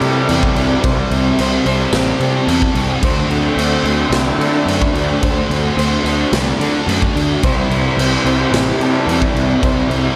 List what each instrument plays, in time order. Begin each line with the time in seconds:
Already playing: distorted electric guitar C3, overdriven electric guitar C3 E3 G3 C4 E4, twelve-string acoustic guitar C5
0.00 picked electric bass C3, distorted electric guitar G3 C4, twelve-string acoustic guitar A4, crash
0.28 picked electric bass E2, distorted electric guitar C3 G3 C4, twelve-string acoustic guitar F#4, crash
0.43 kick
0.56 picked electric bass C2, distorted electric guitar G3 C4, crash
0.84 picked electric bass C2, distorted electric guitar C3 G3 C4, twelve-string acoustic guitar C5, kick, crash
1.11 picked electric bass C2, distorted electric guitar G3 C4, crash
1.38 picked electric bass C2, distorted electric guitar C3 G3 C4, twelve-string acoustic guitar C5, crash
1.66 picked electric bass C2, distorted electric guitar G3 C4, twelve-string acoustic guitar C5, crash
1.92 picked electric bass A1, distorted electric guitar C3 G3 C4, twelve-string acoustic guitar G4, snare, crash
2.20 picked electric bass C3, distorted electric guitar G3 C4, twelve-string acoustic guitar A4, crash
2.47 picked electric bass E2, distorted electric guitar C3 G3 C4, twelve-string acoustic guitar F#4, crash
2.62 kick
2.75 picked electric bass C2, distorted electric guitar G3 C4, crash
3.02 picked electric bass D2, overdriven electric guitar D3 A3 C4 F#4, distorted electric guitar D3 A3 D4, twelve-string acoustic guitar C5, kick, crash
3.29 picked electric bass D2, distorted electric guitar A3 D4, crash
3.56 picked electric bass D2, distorted electric guitar D3 A3 D4, twelve-string acoustic guitar C5, crash
3.83 picked electric bass D2, distorted electric guitar A3 D4, twelve-string acoustic guitar C5, crash
4.10 picked electric bass C2, distorted electric guitar D3 A3 D4, twelve-string acoustic guitar F#4, snare, crash
4.38 picked electric bass D3, distorted electric guitar A3 D4, twelve-string acoustic guitar A4, crash
4.66 picked electric bass F#2, distorted electric guitar D3 A3 D4, twelve-string acoustic guitar F#4, crash
4.82 kick
4.93 picked electric bass D2, distorted electric guitar A3 D4, crash
5.21 picked electric bass D2, distorted electric guitar D3 A3 D4, twelve-string acoustic guitar C5, kick, crash
5.49 picked electric bass D2, distorted electric guitar A3 D4, crash
5.77 picked electric bass D2, distorted electric guitar D3 A3 D4, twelve-string acoustic guitar C5, crash
6.04 picked electric bass D2, distorted electric guitar A3 D4, twelve-string acoustic guitar C5, crash
6.32 picked electric bass C2, distorted electric guitar D3 A3 D4, twelve-string acoustic guitar F#4, snare, crash
6.59 picked electric bass D3, distorted electric guitar A3 D4, twelve-string acoustic guitar A4, crash
6.87 picked electric bass F#2, distorted electric guitar D3 A3 D4, twelve-string acoustic guitar F#4, crash
7.02 kick
7.15 picked electric bass D2, distorted electric guitar A3 D4, crash
7.43 picked electric bass C2, distorted electric guitar C3 G3 C4, overdriven electric guitar C3 E3 G3 C4 E4, twelve-string acoustic guitar C5, kick, crash
7.70 picked electric bass C2, distorted electric guitar G3 C4, crash
7.97 picked electric bass C2, distorted electric guitar C3 G3 C4, twelve-string acoustic guitar C5, crash
8.24 picked electric bass C2, distorted electric guitar G3 C4, twelve-string acoustic guitar C5, crash
8.52 picked electric bass A1, distorted electric guitar C3 G3 C4, twelve-string acoustic guitar G4, snare, crash
8.79 picked electric bass C3, distorted electric guitar G3 C4, twelve-string acoustic guitar A4, crash
9.06 picked electric bass E2, distorted electric guitar C3 G3 C4, crash
9.10 twelve-string acoustic guitar F#4
9.22 kick
9.34 picked electric bass C2, distorted electric guitar G3 C4, crash
9.62 picked electric bass C2, distorted electric guitar C3 G3 C4, twelve-string acoustic guitar C5, kick, crash
9.89 picked electric bass C2, distorted electric guitar G3 C4, crash